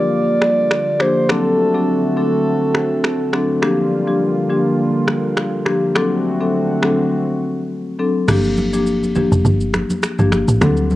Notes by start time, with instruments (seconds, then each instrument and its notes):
Already playing: analog synth pad D3 G3 A#3 F4, soft synth lead D5
0.14 soft synth lead D5
0.42 finger snap, cross-stick
0.71 finger snap, cross-stick
1.00 marimba F3 A#3 D4 G4, soft synth lead C5, finger snap, cross-stick
1.29 marimba F#3 C4 D4 A4, analog synth pad A3 C4 F#4, soft synth lead A4, finger snap, cross-stick
1.74 marimba F#3 C4 D4 A4
2.16 marimba F#3 C4 D4 A4, soft synth lead A4
2.74 finger snap, cross-stick
3.04 finger snap, cross-stick
3.33 marimba F#3 C4 D4 A4, finger snap, cross-stick
3.62 analog synth pad D3 G3 A#3 F4, marimba F3 A#3 D4 G4, finger snap, cross-stick
4.07 marimba F3 A#3 D4 G4
4.50 marimba F3 A#3 D4 G4
5.08 finger snap, cross-stick
5.37 finger snap, cross-stick
5.66 marimba F3 A#3 D4 G4, finger snap, cross-stick
5.95 analog synth pad D3 A3 C4 F#4, marimba F#3 C4 D4 A4, finger snap, cross-stick
6.40 marimba F#3 C4 D4 A4
6.82 marimba F#3 C4 D4 A4, finger snap, cross-stick
7.99 marimba F#3 C4 D4 A4
8.28 log drum bass G1, marimba F3 A#3 D4 G4, finger snap, cross-stick, crash, low conga, shaker
8.44 shaker
8.57 high conga, shaker
8.73 marimba F3 A#3 D4 G4, shaker
8.87 shaker
9.03 high conga, shaker
9.15 marimba F3 A#3 D4 G4, high conga, low conga, shaker
9.32 log drum bass F1, shaker
9.45 log drum bass G1, low conga, shaker
9.61 shaker
9.74 finger snap, cross-stick, high conga, shaker
9.90 high conga, shaker
10.03 finger snap, cross-stick, shaker
10.19 log drum bass G1, marimba F3 A#3 D4 G4, high conga, shaker
10.32 finger snap, cross-stick, high conga, shaker
10.48 log drum bass A1, shaker
10.61 log drum bass D2, marimba F#3 C4 D4 A4, finger snap, cross-stick, low conga, shaker
10.77 shaker
10.90 high conga, shaker